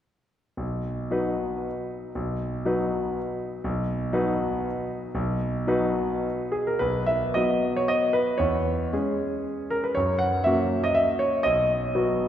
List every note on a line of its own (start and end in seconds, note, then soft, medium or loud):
0.57 1.10 B1 soft
1.11 2.11 F#3 soft
1.11 2.11 D#4 soft
1.11 2.12 B4 soft
2.15 2.64 B1 soft
2.65 3.60 F#3 soft
2.65 3.60 D#4 soft
2.65 3.60 B4 soft
3.64 4.12 B1 soft
4.13 5.11 F#3 soft
4.13 5.11 D#4 soft
4.13 5.11 B4 soft
5.15 5.66 B1 medium
5.67 6.78 F#3 soft
5.67 6.78 D#4 soft
5.67 6.78 B4 medium
6.52 6.67 G#4 medium
6.67 6.81 A#4 soft
6.79 7.35 B1 soft
6.79 7.08 B4 medium
7.06 7.36 E5 medium
7.34 8.36 F#3 soft
7.34 8.36 B3 soft
7.34 8.12 B4 soft
7.34 7.77 D#5 medium
7.76 7.90 C#5 medium
7.88 8.14 D#5 medium
8.13 8.39 B4 medium
8.38 8.91 E2 soft
8.38 9.45 C#5 medium
8.93 9.93 G#3 soft
8.93 9.93 C#4 soft
8.93 9.93 G#4 soft
9.70 9.84 A#4 medium
9.84 9.96 B4 soft
9.95 10.45 F#2 soft
9.95 10.20 C#5 medium
10.19 10.45 F#5 medium
10.44 11.42 A#3 soft
10.44 11.42 C#4 soft
10.44 11.42 F#4 soft
10.44 10.84 E5 medium
10.84 10.97 D#5 medium
10.95 11.21 E5 medium
11.19 11.45 C#5 medium
11.43 11.93 B1 soft
11.43 12.28 D#5 medium
11.95 12.28 F#3 soft
11.95 12.28 B3 soft
11.95 12.28 F#4 soft